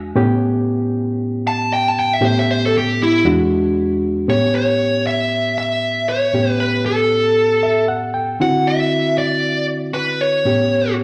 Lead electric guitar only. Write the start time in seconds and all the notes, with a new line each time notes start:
1.47 A5
1.73 G5
1.88 A5
1.99 G5
2.13 E5
2.25 C5
2.39 E5
2.51 C5
2.66 A4
2.78 G4
3.03 E4
4.30 C#5
4.55 C#5
5.07 E5
5.58 E5
6.09 C#5
6.51 B4
6.60 B4
6.86 A4
8.42 F#5
8.67 E5
9.18 D5
9.94 B4
10.21 C#5